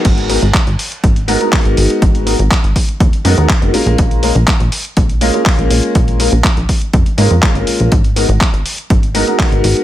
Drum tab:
CC |x---------------|----------------|----------------|----------------|
HH |xxoxxxoxxxoxoxox|xxoxxxoxxxoxxxox|xxoxxxoxxxoxoxox|xxoxxxoxxxoxxxox|
CP |----x-------x---|----x-------x---|----x-------x---|----x-------x---|
BD |o---o---o---o---|o---o-o-o---o---|o---o---o---o---|o---o-o-o---o---|

CC |----------------|
HH |xxoxxxoxxxoxoxox|
CP |----x-------x---|
BD |o---o---o---o---|